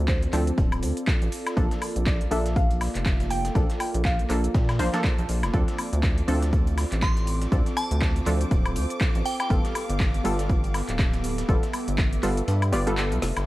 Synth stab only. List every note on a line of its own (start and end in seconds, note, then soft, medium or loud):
0.33 0.54 F3 medium
0.33 0.54 C4 medium
0.33 0.54 D4 medium
0.33 0.55 A4 medium
1.57 2.29 F3 medium
1.57 2.29 A#3 medium
1.57 2.29 D4 medium
1.57 2.29 A4 loud
2.31 3.53 F3 medium
2.31 3.53 A#3 medium
2.31 3.53 D4 medium
2.31 3.53 A4 loud
3.55 3.70 F3 medium
3.55 3.70 A#3 medium
3.55 3.70 D4 medium
3.55 3.70 A4 medium
4.29 4.51 F3 medium
4.29 4.51 A#3 medium
4.29 4.51 D4 medium
4.29 4.51 A4 medium
4.79 4.90 F3 medium
4.79 4.90 A#3 medium
4.79 4.90 D4 medium
4.79 4.90 C5 loud
4.93 5.51 F3 loud
4.93 5.51 A#3 medium
4.93 5.51 D4 medium
4.93 5.51 A4 loud
5.53 6.25 F3 medium
5.53 6.25 C4 medium
5.53 6.26 D4 medium
5.53 6.26 A4 loud
6.28 7.49 F3 medium
6.28 7.49 C4 medium
6.28 7.50 D4 medium
6.28 7.50 A4 loud
7.52 7.67 F3 medium
7.52 7.67 C4 medium
7.52 7.67 D4 medium
7.52 7.67 A4 medium
8.26 8.48 F3 medium
8.26 8.48 C4 medium
8.26 8.48 D4 medium
8.26 8.48 A4 medium
9.50 10.22 G3 medium
9.50 10.22 B3 medium
9.50 10.22 F4 medium
9.50 10.22 A4 medium
10.24 11.46 G3 medium
10.24 11.46 B3 medium
10.24 11.46 F4 medium
10.24 11.46 A4 loud
11.48 11.63 G3 medium
11.48 11.64 B3 medium
11.48 11.64 F4 medium
11.48 11.64 A4 loud
12.23 12.44 G3 medium
12.23 12.44 B3 medium
12.23 12.45 F4 medium
12.23 12.45 A4 medium
12.72 12.83 G3 medium
12.72 12.84 B3 medium
12.72 12.84 F4 medium
12.72 12.84 D5 loud
12.87 13.44 G3 medium
12.87 13.44 B3 medium
12.87 13.45 F4 medium
12.87 13.45 A4 loud